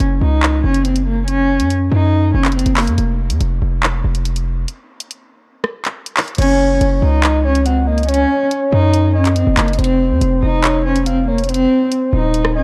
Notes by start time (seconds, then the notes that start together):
0.00 F#1, closed hi-hat
0.21 C#2 D#4
0.43 clap
0.64 F#1 C#4
0.74 closed hi-hat
0.85 C4, closed hi-hat
0.96 closed hi-hat
1.07 A#3
1.28 C#4, closed hi-hat
1.60 F#2, closed hi-hat
1.70 closed hi-hat
1.92 F#2 D#4
2.34 F#1 C#4
2.45 clap, closed hi-hat
2.52 C4, closed hi-hat
2.59 closed hi-hat
2.66 F#1, closed hi-hat
2.77 A#3, clap, open hi-hat
2.87 F#2, closed hi-hat
2.98 F1, closed hi-hat
3.30 F2, closed hi-hat
3.40 F1, closed hi-hat
3.62 F1
3.83 clap
4.04 F1
4.15 closed hi-hat
4.25 closed hi-hat
4.36 closed hi-hat
4.68 closed hi-hat
5.00 closed hi-hat
5.11 closed hi-hat
5.64 cross-stick
5.85 clap, closed hi-hat
6.06 closed hi-hat
6.17 clap, open hi-hat
6.28 closed hi-hat
6.35 F#1 C#4 C#5, closed hi-hat, crash
6.38 closed hi-hat
6.42 closed hi-hat
6.81 F#1, closed hi-hat
7.02 C#2 D#4
7.23 D#5, clap, closed hi-hat
7.45 C#4 C#5
7.55 closed hi-hat
7.66 C4 F#5, closed hi-hat
7.87 A#3 D#5
7.98 closed hi-hat
8.03 closed hi-hat
8.09 C#4 C#5, closed hi-hat
8.14 closed hi-hat
8.51 closed hi-hat
8.72 F#2 D#4
8.94 closed hi-hat
9.15 C#4 D#5
9.25 clap, closed hi-hat
9.36 C4, closed hi-hat
9.47 F#1
9.57 F#1 A#3, clap, closed hi-hat
9.68 closed hi-hat
9.73 closed hi-hat
9.78 F1 C4 C5, closed hi-hat
9.84 closed hi-hat
10.11 F2
10.21 F1, closed hi-hat
10.43 F1 D#4
10.63 C#5, clap, closed hi-hat
10.85 C#4 C5
10.96 closed hi-hat
11.06 C4 F5, closed hi-hat
11.28 A#3 C#5
11.38 closed hi-hat
11.44 closed hi-hat
11.49 C4 C5, closed hi-hat
11.54 closed hi-hat
11.92 closed hi-hat
12.13 D#1 D#4
12.34 closed hi-hat
12.45 cross-stick
12.55 C#4 D#5